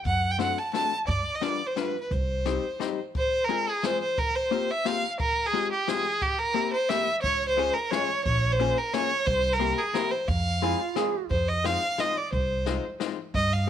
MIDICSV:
0, 0, Header, 1, 6, 480
1, 0, Start_track
1, 0, Key_signature, -3, "minor"
1, 0, Tempo, 344037
1, 82, Time_signature, 3, 2, 24, 8
1, 4406, Key_signature, -4, "minor"
1, 5842, Tempo, 339175
1, 19299, End_track
2, 0, Start_track
2, 0, Title_t, "Violin"
2, 0, Program_c, 0, 40
2, 85, Note_on_c, 0, 78, 89
2, 433, Note_on_c, 0, 79, 93
2, 454, Note_off_c, 0, 78, 0
2, 557, Note_off_c, 0, 79, 0
2, 575, Note_on_c, 0, 78, 84
2, 814, Note_on_c, 0, 81, 76
2, 835, Note_off_c, 0, 78, 0
2, 1026, Note_off_c, 0, 81, 0
2, 1034, Note_on_c, 0, 81, 95
2, 1376, Note_off_c, 0, 81, 0
2, 1508, Note_on_c, 0, 74, 82
2, 1884, Note_on_c, 0, 75, 74
2, 1905, Note_off_c, 0, 74, 0
2, 1992, Note_on_c, 0, 74, 78
2, 2013, Note_off_c, 0, 75, 0
2, 2325, Note_on_c, 0, 72, 67
2, 2346, Note_off_c, 0, 74, 0
2, 2472, Note_on_c, 0, 71, 68
2, 2493, Note_off_c, 0, 72, 0
2, 2793, Note_off_c, 0, 71, 0
2, 2808, Note_on_c, 0, 71, 52
2, 2965, Note_on_c, 0, 72, 66
2, 2985, Note_off_c, 0, 71, 0
2, 4176, Note_off_c, 0, 72, 0
2, 4436, Note_on_c, 0, 72, 92
2, 4803, Note_on_c, 0, 70, 84
2, 4824, Note_off_c, 0, 72, 0
2, 5140, Note_on_c, 0, 68, 80
2, 5161, Note_off_c, 0, 70, 0
2, 5377, Note_on_c, 0, 72, 88
2, 5398, Note_off_c, 0, 68, 0
2, 5607, Note_off_c, 0, 72, 0
2, 5615, Note_on_c, 0, 72, 79
2, 5842, Note_on_c, 0, 70, 92
2, 5863, Note_off_c, 0, 72, 0
2, 6079, Note_on_c, 0, 72, 81
2, 6101, Note_off_c, 0, 70, 0
2, 6581, Note_on_c, 0, 76, 90
2, 6602, Note_off_c, 0, 72, 0
2, 6804, Note_on_c, 0, 77, 95
2, 6825, Note_off_c, 0, 76, 0
2, 7167, Note_off_c, 0, 77, 0
2, 7284, Note_on_c, 0, 70, 91
2, 7649, Note_on_c, 0, 68, 88
2, 7670, Note_off_c, 0, 70, 0
2, 8003, Note_off_c, 0, 68, 0
2, 8011, Note_on_c, 0, 67, 79
2, 8250, Note_on_c, 0, 68, 92
2, 8271, Note_off_c, 0, 67, 0
2, 8721, Note_on_c, 0, 67, 87
2, 8742, Note_off_c, 0, 68, 0
2, 8954, Note_on_c, 0, 70, 98
2, 8975, Note_off_c, 0, 67, 0
2, 9436, Note_off_c, 0, 70, 0
2, 9445, Note_on_c, 0, 72, 83
2, 9669, Note_on_c, 0, 76, 91
2, 9690, Note_off_c, 0, 72, 0
2, 10042, Note_off_c, 0, 76, 0
2, 10144, Note_on_c, 0, 73, 96
2, 10494, Note_off_c, 0, 73, 0
2, 10512, Note_on_c, 0, 72, 97
2, 10866, Note_on_c, 0, 70, 82
2, 10887, Note_off_c, 0, 72, 0
2, 11104, Note_on_c, 0, 73, 94
2, 11125, Note_off_c, 0, 70, 0
2, 11586, Note_off_c, 0, 73, 0
2, 11594, Note_on_c, 0, 73, 90
2, 11977, Note_on_c, 0, 72, 93
2, 11999, Note_off_c, 0, 73, 0
2, 12339, Note_on_c, 0, 70, 81
2, 12360, Note_off_c, 0, 72, 0
2, 12561, Note_on_c, 0, 73, 96
2, 12582, Note_off_c, 0, 70, 0
2, 13025, Note_on_c, 0, 72, 105
2, 13046, Note_off_c, 0, 73, 0
2, 13401, Note_on_c, 0, 70, 93
2, 13422, Note_off_c, 0, 72, 0
2, 13756, Note_on_c, 0, 68, 77
2, 13778, Note_off_c, 0, 70, 0
2, 13985, Note_on_c, 0, 70, 93
2, 14007, Note_off_c, 0, 68, 0
2, 14226, Note_on_c, 0, 72, 73
2, 14247, Note_off_c, 0, 70, 0
2, 14466, Note_on_c, 0, 77, 83
2, 14487, Note_off_c, 0, 72, 0
2, 15431, Note_off_c, 0, 77, 0
2, 15917, Note_on_c, 0, 72, 78
2, 16167, Note_on_c, 0, 75, 80
2, 16188, Note_off_c, 0, 72, 0
2, 16413, Note_on_c, 0, 77, 90
2, 16434, Note_off_c, 0, 75, 0
2, 16899, Note_on_c, 0, 75, 83
2, 16920, Note_off_c, 0, 77, 0
2, 17145, Note_on_c, 0, 74, 75
2, 17166, Note_off_c, 0, 75, 0
2, 17362, Note_off_c, 0, 74, 0
2, 17370, Note_on_c, 0, 72, 62
2, 18044, Note_off_c, 0, 72, 0
2, 18817, Note_on_c, 0, 75, 90
2, 19069, Note_on_c, 0, 77, 89
2, 19090, Note_off_c, 0, 75, 0
2, 19299, Note_off_c, 0, 77, 0
2, 19299, End_track
3, 0, Start_track
3, 0, Title_t, "Clarinet"
3, 0, Program_c, 1, 71
3, 14954, Note_on_c, 1, 64, 86
3, 15203, Note_on_c, 1, 65, 64
3, 15224, Note_off_c, 1, 64, 0
3, 15434, Note_off_c, 1, 65, 0
3, 15448, Note_on_c, 1, 68, 88
3, 15891, Note_off_c, 1, 68, 0
3, 19299, End_track
4, 0, Start_track
4, 0, Title_t, "Hollow-body jazz guitar"
4, 0, Program_c, 2, 26
4, 541, Note_on_c, 2, 57, 59
4, 550, Note_on_c, 2, 62, 57
4, 555, Note_on_c, 2, 60, 53
4, 562, Note_on_c, 2, 66, 56
4, 803, Note_off_c, 2, 57, 0
4, 805, Note_off_c, 2, 60, 0
4, 807, Note_off_c, 2, 62, 0
4, 809, Note_off_c, 2, 66, 0
4, 1023, Note_on_c, 2, 57, 49
4, 1033, Note_on_c, 2, 62, 46
4, 1034, Note_on_c, 2, 60, 35
4, 1045, Note_on_c, 2, 66, 50
4, 1282, Note_off_c, 2, 57, 0
4, 1283, Note_off_c, 2, 60, 0
4, 1287, Note_off_c, 2, 62, 0
4, 1289, Note_off_c, 2, 66, 0
4, 1973, Note_on_c, 2, 55, 49
4, 1981, Note_on_c, 2, 62, 62
4, 1986, Note_on_c, 2, 59, 44
4, 1994, Note_on_c, 2, 65, 60
4, 2235, Note_off_c, 2, 55, 0
4, 2237, Note_off_c, 2, 59, 0
4, 2239, Note_off_c, 2, 62, 0
4, 2240, Note_off_c, 2, 65, 0
4, 2458, Note_on_c, 2, 55, 46
4, 2465, Note_on_c, 2, 59, 36
4, 2470, Note_on_c, 2, 62, 46
4, 2480, Note_on_c, 2, 65, 55
4, 2716, Note_off_c, 2, 55, 0
4, 2717, Note_off_c, 2, 59, 0
4, 2722, Note_off_c, 2, 62, 0
4, 2723, Note_off_c, 2, 65, 0
4, 3427, Note_on_c, 2, 55, 59
4, 3433, Note_on_c, 2, 60, 56
4, 3443, Note_on_c, 2, 63, 48
4, 3455, Note_on_c, 2, 67, 59
4, 3682, Note_off_c, 2, 55, 0
4, 3687, Note_off_c, 2, 60, 0
4, 3687, Note_off_c, 2, 63, 0
4, 3689, Note_off_c, 2, 67, 0
4, 3903, Note_on_c, 2, 55, 61
4, 3909, Note_on_c, 2, 60, 49
4, 3913, Note_on_c, 2, 63, 64
4, 3920, Note_on_c, 2, 67, 60
4, 4164, Note_off_c, 2, 60, 0
4, 4165, Note_off_c, 2, 55, 0
4, 4169, Note_off_c, 2, 63, 0
4, 4169, Note_off_c, 2, 67, 0
4, 4867, Note_on_c, 2, 56, 65
4, 4874, Note_on_c, 2, 60, 47
4, 4886, Note_on_c, 2, 65, 50
4, 4891, Note_on_c, 2, 68, 69
4, 5125, Note_off_c, 2, 56, 0
4, 5130, Note_off_c, 2, 60, 0
4, 5132, Note_off_c, 2, 65, 0
4, 5137, Note_off_c, 2, 68, 0
4, 5355, Note_on_c, 2, 56, 55
4, 5362, Note_on_c, 2, 60, 42
4, 5363, Note_on_c, 2, 65, 50
4, 5375, Note_on_c, 2, 68, 53
4, 5608, Note_off_c, 2, 56, 0
4, 5608, Note_off_c, 2, 60, 0
4, 5611, Note_off_c, 2, 65, 0
4, 5617, Note_off_c, 2, 68, 0
4, 6299, Note_on_c, 2, 58, 62
4, 6310, Note_on_c, 2, 65, 58
4, 6313, Note_on_c, 2, 60, 54
4, 6321, Note_on_c, 2, 67, 64
4, 6560, Note_off_c, 2, 58, 0
4, 6563, Note_off_c, 2, 60, 0
4, 6565, Note_off_c, 2, 65, 0
4, 6566, Note_off_c, 2, 67, 0
4, 6782, Note_on_c, 2, 58, 53
4, 6790, Note_on_c, 2, 60, 45
4, 6790, Note_on_c, 2, 65, 46
4, 6798, Note_on_c, 2, 67, 47
4, 7042, Note_off_c, 2, 58, 0
4, 7043, Note_off_c, 2, 60, 0
4, 7046, Note_off_c, 2, 65, 0
4, 7046, Note_off_c, 2, 67, 0
4, 7748, Note_on_c, 2, 56, 69
4, 7759, Note_on_c, 2, 65, 60
4, 7762, Note_on_c, 2, 60, 46
4, 7771, Note_on_c, 2, 67, 66
4, 8004, Note_off_c, 2, 56, 0
4, 8006, Note_off_c, 2, 60, 0
4, 8009, Note_off_c, 2, 65, 0
4, 8012, Note_off_c, 2, 67, 0
4, 8232, Note_on_c, 2, 56, 47
4, 8239, Note_on_c, 2, 60, 47
4, 8240, Note_on_c, 2, 65, 49
4, 8252, Note_on_c, 2, 67, 65
4, 8484, Note_off_c, 2, 60, 0
4, 8486, Note_off_c, 2, 56, 0
4, 8488, Note_off_c, 2, 65, 0
4, 8491, Note_off_c, 2, 67, 0
4, 9175, Note_on_c, 2, 58, 66
4, 9184, Note_on_c, 2, 60, 51
4, 9188, Note_on_c, 2, 64, 51
4, 9190, Note_on_c, 2, 67, 62
4, 9436, Note_off_c, 2, 58, 0
4, 9438, Note_off_c, 2, 64, 0
4, 9440, Note_off_c, 2, 60, 0
4, 9440, Note_off_c, 2, 67, 0
4, 9674, Note_on_c, 2, 58, 55
4, 9679, Note_on_c, 2, 60, 48
4, 9680, Note_on_c, 2, 64, 52
4, 9686, Note_on_c, 2, 67, 54
4, 9927, Note_off_c, 2, 60, 0
4, 9929, Note_off_c, 2, 58, 0
4, 9930, Note_off_c, 2, 64, 0
4, 9933, Note_off_c, 2, 67, 0
4, 10635, Note_on_c, 2, 56, 57
4, 10646, Note_on_c, 2, 65, 56
4, 10647, Note_on_c, 2, 61, 52
4, 10658, Note_on_c, 2, 68, 64
4, 10890, Note_off_c, 2, 56, 0
4, 10892, Note_off_c, 2, 61, 0
4, 10895, Note_off_c, 2, 65, 0
4, 10897, Note_off_c, 2, 68, 0
4, 11115, Note_on_c, 2, 56, 56
4, 11122, Note_on_c, 2, 61, 45
4, 11129, Note_on_c, 2, 65, 46
4, 11138, Note_on_c, 2, 68, 55
4, 11367, Note_off_c, 2, 56, 0
4, 11370, Note_off_c, 2, 61, 0
4, 11375, Note_off_c, 2, 65, 0
4, 11377, Note_off_c, 2, 68, 0
4, 12082, Note_on_c, 2, 58, 68
4, 12086, Note_on_c, 2, 61, 60
4, 12097, Note_on_c, 2, 65, 55
4, 12102, Note_on_c, 2, 68, 75
4, 12328, Note_off_c, 2, 58, 0
4, 12332, Note_off_c, 2, 61, 0
4, 12334, Note_off_c, 2, 65, 0
4, 12334, Note_off_c, 2, 68, 0
4, 12561, Note_on_c, 2, 58, 56
4, 12570, Note_on_c, 2, 65, 44
4, 12574, Note_on_c, 2, 61, 47
4, 12577, Note_on_c, 2, 68, 57
4, 12807, Note_off_c, 2, 58, 0
4, 12810, Note_off_c, 2, 61, 0
4, 12811, Note_off_c, 2, 65, 0
4, 12811, Note_off_c, 2, 68, 0
4, 13497, Note_on_c, 2, 58, 66
4, 13501, Note_on_c, 2, 60, 60
4, 13515, Note_on_c, 2, 64, 44
4, 13518, Note_on_c, 2, 67, 79
4, 13753, Note_off_c, 2, 58, 0
4, 13756, Note_off_c, 2, 60, 0
4, 13758, Note_off_c, 2, 64, 0
4, 13763, Note_off_c, 2, 67, 0
4, 13989, Note_on_c, 2, 58, 49
4, 13996, Note_on_c, 2, 60, 54
4, 14000, Note_on_c, 2, 67, 62
4, 14010, Note_on_c, 2, 64, 49
4, 14237, Note_off_c, 2, 58, 0
4, 14241, Note_off_c, 2, 60, 0
4, 14244, Note_off_c, 2, 67, 0
4, 14245, Note_off_c, 2, 64, 0
4, 14949, Note_on_c, 2, 56, 56
4, 14960, Note_on_c, 2, 60, 56
4, 14963, Note_on_c, 2, 65, 55
4, 14970, Note_on_c, 2, 68, 71
4, 15201, Note_off_c, 2, 56, 0
4, 15202, Note_off_c, 2, 60, 0
4, 15207, Note_off_c, 2, 65, 0
4, 15207, Note_off_c, 2, 68, 0
4, 15425, Note_on_c, 2, 56, 52
4, 15427, Note_on_c, 2, 60, 53
4, 15438, Note_on_c, 2, 68, 60
4, 15440, Note_on_c, 2, 65, 54
4, 15680, Note_off_c, 2, 60, 0
4, 15681, Note_off_c, 2, 56, 0
4, 15682, Note_off_c, 2, 65, 0
4, 15686, Note_off_c, 2, 68, 0
4, 16393, Note_on_c, 2, 56, 52
4, 16398, Note_on_c, 2, 60, 57
4, 16406, Note_on_c, 2, 63, 42
4, 16408, Note_on_c, 2, 65, 66
4, 16647, Note_off_c, 2, 56, 0
4, 16650, Note_off_c, 2, 60, 0
4, 16650, Note_off_c, 2, 63, 0
4, 16654, Note_off_c, 2, 65, 0
4, 16876, Note_on_c, 2, 56, 48
4, 16888, Note_on_c, 2, 60, 36
4, 16890, Note_on_c, 2, 63, 56
4, 16898, Note_on_c, 2, 65, 45
4, 17131, Note_off_c, 2, 56, 0
4, 17132, Note_off_c, 2, 60, 0
4, 17136, Note_off_c, 2, 65, 0
4, 17137, Note_off_c, 2, 63, 0
4, 17842, Note_on_c, 2, 56, 70
4, 17846, Note_on_c, 2, 63, 54
4, 17860, Note_on_c, 2, 60, 55
4, 17868, Note_on_c, 2, 65, 59
4, 18090, Note_off_c, 2, 56, 0
4, 18095, Note_off_c, 2, 63, 0
4, 18098, Note_off_c, 2, 60, 0
4, 18098, Note_off_c, 2, 65, 0
4, 18313, Note_on_c, 2, 56, 68
4, 18320, Note_on_c, 2, 60, 51
4, 18324, Note_on_c, 2, 63, 50
4, 18337, Note_on_c, 2, 65, 54
4, 18566, Note_off_c, 2, 56, 0
4, 18570, Note_off_c, 2, 60, 0
4, 18573, Note_off_c, 2, 63, 0
4, 18576, Note_off_c, 2, 65, 0
4, 19299, End_track
5, 0, Start_track
5, 0, Title_t, "Upright bass"
5, 0, Program_c, 3, 32
5, 78, Note_on_c, 3, 42, 77
5, 704, Note_off_c, 3, 42, 0
5, 1512, Note_on_c, 3, 43, 83
5, 1676, Note_off_c, 3, 43, 0
5, 2940, Note_on_c, 3, 36, 80
5, 3572, Note_off_c, 3, 36, 0
5, 10160, Note_on_c, 3, 37, 77
5, 10786, Note_off_c, 3, 37, 0
5, 11599, Note_on_c, 3, 34, 72
5, 12221, Note_off_c, 3, 34, 0
5, 13032, Note_on_c, 3, 36, 83
5, 13654, Note_off_c, 3, 36, 0
5, 14468, Note_on_c, 3, 41, 79
5, 15095, Note_off_c, 3, 41, 0
5, 15911, Note_on_c, 3, 41, 75
5, 16541, Note_off_c, 3, 41, 0
5, 17358, Note_on_c, 3, 36, 80
5, 17983, Note_off_c, 3, 36, 0
5, 18794, Note_on_c, 3, 43, 91
5, 19299, Note_off_c, 3, 43, 0
5, 19299, End_track
6, 0, Start_track
6, 0, Title_t, "Drums"
6, 66, Note_on_c, 9, 42, 54
6, 74, Note_on_c, 9, 36, 83
6, 206, Note_off_c, 9, 42, 0
6, 214, Note_off_c, 9, 36, 0
6, 551, Note_on_c, 9, 38, 66
6, 551, Note_on_c, 9, 42, 40
6, 690, Note_off_c, 9, 38, 0
6, 690, Note_off_c, 9, 42, 0
6, 1036, Note_on_c, 9, 38, 64
6, 1036, Note_on_c, 9, 42, 42
6, 1176, Note_off_c, 9, 38, 0
6, 1176, Note_off_c, 9, 42, 0
6, 1511, Note_on_c, 9, 36, 77
6, 1512, Note_on_c, 9, 42, 46
6, 1651, Note_off_c, 9, 36, 0
6, 1652, Note_off_c, 9, 42, 0
6, 1984, Note_on_c, 9, 38, 52
6, 1984, Note_on_c, 9, 42, 38
6, 2123, Note_off_c, 9, 38, 0
6, 2123, Note_off_c, 9, 42, 0
6, 2463, Note_on_c, 9, 38, 64
6, 2463, Note_on_c, 9, 42, 50
6, 2603, Note_off_c, 9, 38, 0
6, 2603, Note_off_c, 9, 42, 0
6, 2946, Note_on_c, 9, 36, 76
6, 2946, Note_on_c, 9, 42, 46
6, 3086, Note_off_c, 9, 36, 0
6, 3086, Note_off_c, 9, 42, 0
6, 3424, Note_on_c, 9, 38, 55
6, 3424, Note_on_c, 9, 42, 45
6, 3564, Note_off_c, 9, 38, 0
6, 3564, Note_off_c, 9, 42, 0
6, 3915, Note_on_c, 9, 38, 57
6, 3915, Note_on_c, 9, 42, 43
6, 4054, Note_off_c, 9, 38, 0
6, 4054, Note_off_c, 9, 42, 0
6, 4388, Note_on_c, 9, 42, 43
6, 4395, Note_on_c, 9, 36, 84
6, 4528, Note_off_c, 9, 42, 0
6, 4535, Note_off_c, 9, 36, 0
6, 4869, Note_on_c, 9, 42, 39
6, 5008, Note_off_c, 9, 42, 0
6, 5346, Note_on_c, 9, 38, 74
6, 5346, Note_on_c, 9, 42, 44
6, 5486, Note_off_c, 9, 38, 0
6, 5486, Note_off_c, 9, 42, 0
6, 5825, Note_on_c, 9, 42, 53
6, 5829, Note_on_c, 9, 36, 96
6, 5967, Note_off_c, 9, 42, 0
6, 5971, Note_off_c, 9, 36, 0
6, 6312, Note_on_c, 9, 42, 40
6, 6454, Note_off_c, 9, 42, 0
6, 6788, Note_on_c, 9, 38, 77
6, 6788, Note_on_c, 9, 42, 55
6, 6929, Note_off_c, 9, 38, 0
6, 6929, Note_off_c, 9, 42, 0
6, 7268, Note_on_c, 9, 42, 49
6, 7271, Note_on_c, 9, 36, 97
6, 7409, Note_off_c, 9, 42, 0
6, 7413, Note_off_c, 9, 36, 0
6, 7753, Note_on_c, 9, 42, 46
6, 7895, Note_off_c, 9, 42, 0
6, 8241, Note_on_c, 9, 38, 68
6, 8241, Note_on_c, 9, 42, 46
6, 8382, Note_off_c, 9, 38, 0
6, 8382, Note_off_c, 9, 42, 0
6, 8713, Note_on_c, 9, 36, 73
6, 8713, Note_on_c, 9, 42, 49
6, 8854, Note_off_c, 9, 42, 0
6, 8855, Note_off_c, 9, 36, 0
6, 9194, Note_on_c, 9, 42, 46
6, 9336, Note_off_c, 9, 42, 0
6, 9679, Note_on_c, 9, 38, 74
6, 9679, Note_on_c, 9, 42, 45
6, 9821, Note_off_c, 9, 38, 0
6, 9821, Note_off_c, 9, 42, 0
6, 10160, Note_on_c, 9, 36, 90
6, 10163, Note_on_c, 9, 42, 49
6, 10301, Note_off_c, 9, 36, 0
6, 10305, Note_off_c, 9, 42, 0
6, 10650, Note_on_c, 9, 42, 42
6, 10791, Note_off_c, 9, 42, 0
6, 11130, Note_on_c, 9, 38, 66
6, 11130, Note_on_c, 9, 42, 44
6, 11272, Note_off_c, 9, 38, 0
6, 11272, Note_off_c, 9, 42, 0
6, 11599, Note_on_c, 9, 42, 49
6, 11601, Note_on_c, 9, 36, 81
6, 11741, Note_off_c, 9, 42, 0
6, 11743, Note_off_c, 9, 36, 0
6, 12086, Note_on_c, 9, 42, 52
6, 12228, Note_off_c, 9, 42, 0
6, 12564, Note_on_c, 9, 38, 70
6, 12564, Note_on_c, 9, 42, 56
6, 12705, Note_off_c, 9, 38, 0
6, 12705, Note_off_c, 9, 42, 0
6, 13036, Note_on_c, 9, 36, 98
6, 13045, Note_on_c, 9, 42, 47
6, 13178, Note_off_c, 9, 36, 0
6, 13186, Note_off_c, 9, 42, 0
6, 13507, Note_on_c, 9, 42, 45
6, 13649, Note_off_c, 9, 42, 0
6, 13995, Note_on_c, 9, 38, 69
6, 13995, Note_on_c, 9, 42, 48
6, 14137, Note_off_c, 9, 38, 0
6, 14137, Note_off_c, 9, 42, 0
6, 14463, Note_on_c, 9, 42, 54
6, 14468, Note_on_c, 9, 36, 84
6, 14605, Note_off_c, 9, 42, 0
6, 14610, Note_off_c, 9, 36, 0
6, 14956, Note_on_c, 9, 42, 47
6, 15098, Note_off_c, 9, 42, 0
6, 15428, Note_on_c, 9, 38, 71
6, 15428, Note_on_c, 9, 42, 51
6, 15570, Note_off_c, 9, 38, 0
6, 15570, Note_off_c, 9, 42, 0
6, 15913, Note_on_c, 9, 42, 49
6, 15920, Note_on_c, 9, 36, 79
6, 16055, Note_off_c, 9, 42, 0
6, 16062, Note_off_c, 9, 36, 0
6, 16406, Note_on_c, 9, 38, 63
6, 16406, Note_on_c, 9, 42, 39
6, 16547, Note_off_c, 9, 38, 0
6, 16547, Note_off_c, 9, 42, 0
6, 16873, Note_on_c, 9, 38, 65
6, 16873, Note_on_c, 9, 42, 49
6, 17015, Note_off_c, 9, 38, 0
6, 17015, Note_off_c, 9, 42, 0
6, 17362, Note_on_c, 9, 42, 44
6, 17363, Note_on_c, 9, 36, 81
6, 17504, Note_off_c, 9, 42, 0
6, 17505, Note_off_c, 9, 36, 0
6, 17831, Note_on_c, 9, 38, 57
6, 17831, Note_on_c, 9, 42, 39
6, 17973, Note_off_c, 9, 38, 0
6, 17973, Note_off_c, 9, 42, 0
6, 18318, Note_on_c, 9, 38, 66
6, 18318, Note_on_c, 9, 42, 42
6, 18460, Note_off_c, 9, 38, 0
6, 18460, Note_off_c, 9, 42, 0
6, 18799, Note_on_c, 9, 36, 75
6, 18802, Note_on_c, 9, 42, 53
6, 18940, Note_off_c, 9, 36, 0
6, 18943, Note_off_c, 9, 42, 0
6, 19299, End_track
0, 0, End_of_file